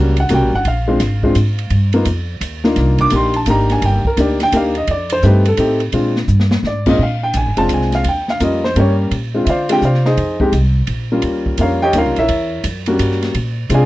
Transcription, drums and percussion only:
0.16 ride medium
0.29 kick soft
0.29 hi-hat pedal medium
0.29 ride medium
0.65 kick soft
0.65 ride medium
1.00 kick soft
1.00 snare soft
1.00 hi-hat pedal medium
1.00 ride medium
1.23 kick medium
1.35 kick soft
1.35 hi-hat pedal medium
1.35 ride medium
1.58 ride soft
1.70 kick soft
1.70 ride medium
1.93 ride soft
2.05 kick soft
2.05 hi-hat pedal soft
2.05 ride medium
2.41 kick soft
2.41 hi-hat pedal medium
2.41 ride medium
2.64 snare medium
2.76 kick soft
2.76 snare soft
2.76 ride medium
2.98 kick medium
2.98 ride soft
3.10 kick soft
3.10 hi-hat pedal medium
3.10 ride medium
3.34 ride soft
3.46 kick soft
3.46 hi-hat pedal medium
3.46 ride medium
3.70 snare soft
3.70 ride soft
3.82 kick soft
3.82 ride medium
4.05 kick medium
4.17 kick soft
4.17 hi-hat pedal medium
4.17 ride medium
4.40 snare soft
4.40 ride medium
4.52 kick soft
4.52 hi-hat pedal medium
4.52 ride medium
4.75 ride soft
4.87 kick soft
4.87 ride medium
5.10 ride medium
5.22 kick soft
5.22 hi-hat pedal medium
5.45 ride medium
5.57 kick soft
5.57 hi-hat pedal medium
5.57 ride medium
5.80 ride soft
5.92 kick soft
5.92 ride medium
6.16 snare medium
6.28 hi-hat pedal medium
6.40 snare medium
6.51 snare loud
6.64 snare medium
6.86 kick medium
6.86 crash medium
7.33 kick soft
7.33 hi-hat pedal medium
7.33 ride medium
7.57 ride medium
7.69 kick soft
7.69 hi-hat pedal soft
7.69 ride medium
7.81 snare soft
7.92 snare soft
7.92 ride soft
8.04 kick soft
8.04 ride medium
8.28 snare soft
8.40 kick soft
8.40 hi-hat pedal medium
8.40 ride medium
8.64 snare soft
8.76 kick soft
8.76 ride medium
9.11 kick soft
9.11 ride medium
9.46 kick soft
9.46 hi-hat pedal soft
9.46 ride medium
9.69 ride medium
9.82 kick soft
9.82 hi-hat pedal medium
9.94 snare soft
10.05 snare soft
10.17 kick soft
10.17 ride medium
10.40 kick medium
10.52 kick soft
10.52 hi-hat pedal soft
10.52 ride medium
10.87 kick soft
10.87 ride medium
11.22 kick soft
11.22 ride medium
11.46 kick medium
11.58 kick soft
11.58 hi-hat pedal soft
11.58 ride medium
11.93 kick soft
11.93 hi-hat pedal soft
11.93 ride medium
12.16 ride soft
12.28 kick soft
12.28 ride medium
12.64 kick soft
12.64 hi-hat pedal medium
12.64 ride medium
12.86 ride medium
12.99 kick soft
12.99 hi-hat pedal medium
12.99 ride medium
13.11 snare soft
13.22 snare soft
13.22 ride soft
13.34 kick soft
13.34 ride medium
13.70 kick soft
13.70 hi-hat pedal medium
13.70 ride medium

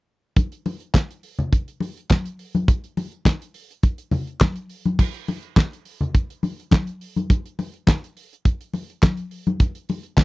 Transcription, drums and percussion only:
0.36 kick loud
0.36 closed hi-hat medium
0.36 muted conga soft
0.52 closed hi-hat soft
0.66 open hi-hat medium
0.66 muted conga soft
0.80 closed hi-hat soft
0.94 kick loud
0.94 snare loud
0.94 clap medium
0.94 closed hi-hat medium
0.94 high conga medium
1.11 closed hi-hat soft
1.23 open hi-hat medium
1.39 closed hi-hat soft
1.39 low conga medium
1.52 kick loud
1.52 closed hi-hat medium
1.52 muted conga soft
1.68 closed hi-hat soft
1.80 open hi-hat medium
1.80 muted conga soft
1.97 closed hi-hat soft
2.10 kick loud
2.10 snare loud
2.10 clap medium
2.10 closed hi-hat medium
2.10 high conga medium
2.25 closed hi-hat medium
2.39 open hi-hat medium
2.55 closed hi-hat soft
2.55 high conga medium
2.68 kick loud
2.68 closed hi-hat medium
2.68 muted conga soft
2.84 closed hi-hat soft
2.97 open hi-hat medium
2.97 muted conga medium
3.12 closed hi-hat soft
3.25 kick medium
3.25 snare medium
3.25 clap medium
3.25 closed hi-hat medium
3.25 high conga medium
3.42 closed hi-hat soft
3.54 open hi-hat medium
3.71 closed hi-hat soft
3.83 kick loud
3.83 closed hi-hat medium
3.83 muted conga soft
3.98 closed hi-hat soft
4.11 open hi-hat medium
4.11 muted conga soft
4.11 low conga medium
4.27 closed hi-hat soft
4.40 kick loud
4.40 snare loud
4.40 clap medium
4.40 closed hi-hat medium
4.40 high conga medium
4.56 closed hi-hat soft
4.69 open hi-hat medium
4.86 closed hi-hat soft
4.86 high conga medium
4.99 kick loud
4.99 crash loud
4.99 muted conga medium
5.14 closed hi-hat soft
5.28 open hi-hat medium
5.28 muted conga medium
5.43 closed hi-hat soft
5.56 kick medium
5.56 snare loud
5.56 clap medium
5.56 closed hi-hat medium
5.56 high conga medium
5.73 closed hi-hat soft
5.85 open hi-hat medium
6.01 closed hi-hat soft
6.01 low conga medium
6.14 kick loud
6.14 closed hi-hat medium
6.14 muted conga soft
6.30 closed hi-hat soft
6.43 open hi-hat medium
6.43 muted conga medium
6.60 closed hi-hat soft
6.71 kick loud
6.71 snare loud
6.71 clap medium
6.71 closed hi-hat medium
6.71 high conga medium
6.87 closed hi-hat soft
7.01 open hi-hat medium
7.16 closed hi-hat soft
7.16 high conga medium
7.30 kick loud
7.30 closed hi-hat medium
7.30 muted conga soft
7.46 closed hi-hat soft
7.59 open hi-hat medium
7.59 muted conga medium
7.74 closed hi-hat soft
7.87 kick loud
7.87 snare loud
7.87 clap medium
7.87 closed hi-hat medium
7.87 high conga medium
8.04 closed hi-hat soft
8.17 open hi-hat medium
8.33 closed hi-hat soft
8.45 kick loud
8.45 closed hi-hat medium
8.45 muted conga soft
8.61 closed hi-hat soft
8.74 open hi-hat medium
8.74 muted conga soft
8.90 closed hi-hat soft
9.02 kick loud
9.02 snare loud
9.02 clap medium
9.02 closed hi-hat medium
9.02 high conga medium
9.17 closed hi-hat medium
9.31 open hi-hat medium
9.47 closed hi-hat soft
9.47 high conga medium
9.60 kick loud
9.60 closed hi-hat medium
9.60 muted conga medium
9.75 closed hi-hat soft
9.89 open hi-hat medium
9.89 muted conga medium
10.03 closed hi-hat soft
10.17 kick loud
10.17 snare loud
10.17 clap medium
10.17 closed hi-hat medium
10.17 high conga medium

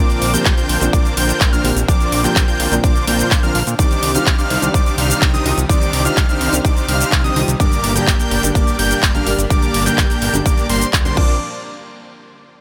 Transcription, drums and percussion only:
0.10 closed hi-hat soft
0.10 shaker soft
0.22 open hi-hat loud
0.34 closed hi-hat medium
0.34 shaker medium
0.46 kick loud
0.46 clap loud
0.46 closed hi-hat medium
0.46 shaker medium
0.58 closed hi-hat soft
0.58 shaker soft
0.69 open hi-hat loud
0.81 closed hi-hat soft
0.81 shaker medium
0.93 kick loud
0.93 closed hi-hat medium
0.93 shaker medium
1.05 closed hi-hat soft
1.05 shaker soft
1.17 open hi-hat loud
1.29 closed hi-hat medium
1.29 shaker medium
1.41 kick loud
1.41 clap loud
1.41 closed hi-hat soft
1.41 shaker medium
1.53 closed hi-hat soft
1.53 shaker soft
1.65 open hi-hat loud
1.77 closed hi-hat medium
1.77 shaker medium
1.88 kick loud
1.88 closed hi-hat medium
1.88 shaker medium
2.00 closed hi-hat soft
2.00 shaker soft
2.12 open hi-hat loud
2.24 clap soft
2.24 closed hi-hat medium
2.24 shaker medium
2.36 kick loud
2.36 clap loud
2.36 closed hi-hat medium
2.36 shaker medium
2.48 closed hi-hat soft
2.48 shaker soft
2.60 open hi-hat loud
2.72 closed hi-hat medium
2.72 shaker medium
2.84 kick loud
2.84 closed hi-hat soft
2.84 shaker medium
2.96 closed hi-hat soft
2.96 shaker soft
3.07 open hi-hat loud
3.19 closed hi-hat medium
3.19 shaker medium
3.31 kick loud
3.31 clap loud
3.31 closed hi-hat soft
3.31 shaker medium
3.43 closed hi-hat soft
3.43 shaker soft
3.55 open hi-hat loud
3.67 closed hi-hat soft
3.67 shaker medium
3.79 kick loud
3.79 closed hi-hat medium
3.79 shaker medium
3.91 closed hi-hat soft
3.91 shaker soft
4.03 open hi-hat loud
4.15 closed hi-hat medium
4.15 shaker medium
4.26 kick loud
4.26 clap loud
4.26 closed hi-hat medium
4.26 shaker medium
4.39 closed hi-hat soft
4.39 shaker soft
4.50 open hi-hat medium
4.62 closed hi-hat soft
4.62 shaker medium
4.74 kick loud
4.74 closed hi-hat medium
4.74 shaker medium
4.86 closed hi-hat soft
4.86 shaker soft
4.98 open hi-hat loud
5.10 closed hi-hat soft
5.10 shaker medium
5.22 kick loud
5.22 clap loud
5.22 closed hi-hat medium
5.22 shaker medium
5.34 closed hi-hat soft
5.34 shaker soft
5.46 open hi-hat medium
5.58 closed hi-hat medium
5.58 shaker medium
5.69 kick loud
5.69 closed hi-hat medium
5.69 shaker medium
5.81 closed hi-hat soft
5.81 shaker soft
5.93 open hi-hat loud
6.05 closed hi-hat medium
6.05 shaker medium
6.17 kick loud
6.17 clap loud
6.17 closed hi-hat medium
6.17 shaker medium
6.29 closed hi-hat soft
6.29 shaker soft
6.41 open hi-hat medium
6.53 closed hi-hat medium
6.53 shaker medium
6.65 kick loud
6.65 closed hi-hat medium
6.65 shaker medium
6.77 closed hi-hat soft
6.77 shaker soft
6.89 open hi-hat loud
7.00 closed hi-hat medium
7.00 shaker medium
7.12 kick loud
7.12 clap loud
7.12 closed hi-hat medium
7.12 shaker medium
7.24 closed hi-hat soft
7.24 shaker soft
7.36 open hi-hat medium
7.48 closed hi-hat medium
7.48 shaker medium
7.60 kick loud
7.60 closed hi-hat medium
7.60 shaker medium
7.72 closed hi-hat soft
7.72 shaker soft
7.84 open hi-hat loud
7.96 closed hi-hat medium
7.96 shaker medium
8.07 kick loud
8.07 clap loud
8.07 closed hi-hat medium
8.07 shaker medium
8.20 closed hi-hat soft
8.20 shaker soft
8.31 open hi-hat medium
8.43 closed hi-hat medium
8.43 shaker medium
8.55 kick loud
8.55 closed hi-hat medium
8.55 shaker medium
8.67 closed hi-hat soft
8.67 shaker soft
8.79 open hi-hat loud
8.91 closed hi-hat medium
8.91 shaker medium
9.03 kick loud
9.03 clap loud
9.03 closed hi-hat medium
9.03 shaker medium
9.15 closed hi-hat soft
9.15 shaker soft
9.27 open hi-hat medium
9.39 closed hi-hat medium
9.39 shaker medium
9.50 kick loud
9.50 closed hi-hat medium
9.50 shaker medium
9.62 closed hi-hat soft
9.62 shaker soft
9.74 open hi-hat loud
9.86 clap soft
9.86 closed hi-hat medium
9.86 shaker medium
9.98 kick loud
9.98 clap loud
9.98 closed hi-hat medium
9.98 shaker medium
10.10 closed hi-hat soft
10.10 shaker soft
10.22 open hi-hat medium
10.34 closed hi-hat medium
10.34 shaker medium
10.46 kick loud
10.46 closed hi-hat medium
10.46 shaker medium
10.58 closed hi-hat soft
10.58 shaker soft
10.69 open hi-hat loud
10.81 closed hi-hat medium
10.81 shaker medium
10.93 kick loud
10.93 clap loud
10.93 closed hi-hat medium
10.93 shaker medium
11.05 closed hi-hat soft
11.05 shaker soft
11.17 kick loud
11.17 crash medium

